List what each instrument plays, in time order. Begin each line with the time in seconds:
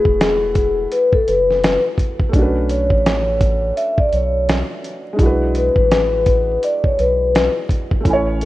Already playing: felt piano A3 E4 F#4 G#4 B4, vibraphone G#4
0.05 sub bass E1, kick
0.21 snare, closed hi-hat
0.55 kick, closed hi-hat
0.92 vibraphone B4, closed hi-hat
1.13 vibraphone A4, kick
1.27 sub bass F#1, vibraphone B4, closed hi-hat
1.50 snare
1.64 snare, closed hi-hat
1.98 kick, closed hi-hat
2.20 kick
2.29 felt piano A3 C#4
2.33 sub bass B1, felt piano D4, kick, closed hi-hat
2.38 felt piano F#4 B4
2.69 vibraphone C#5, closed hi-hat
2.90 sub bass A1, kick
3.06 snare, closed hi-hat
3.41 kick, closed hi-hat
3.77 vibraphone E5, closed hi-hat
3.98 vibraphone D5, kick
4.12 sub bass B1, vibraphone C#5, closed hi-hat
4.49 snare, closed hi-hat
4.84 closed hi-hat
5.13 felt piano G#3 D4
5.19 sub bass B1, felt piano E4 F#4, kick, closed hi-hat
5.26 felt piano B4
5.55 vibraphone B4, closed hi-hat
5.76 sub bass A1, kick
5.91 snare, closed hi-hat
6.26 kick, closed hi-hat
6.63 vibraphone D5, closed hi-hat
6.84 vibraphone C#5, kick
6.98 sub bass B1, vibraphone B4, closed hi-hat
7.35 snare, closed hi-hat
7.69 kick, closed hi-hat
7.91 kick
8.01 felt piano A3 C#4
8.05 sub bass A1, felt piano E4, kick, closed hi-hat
8.10 felt piano C#5 G#5
8.41 closed hi-hat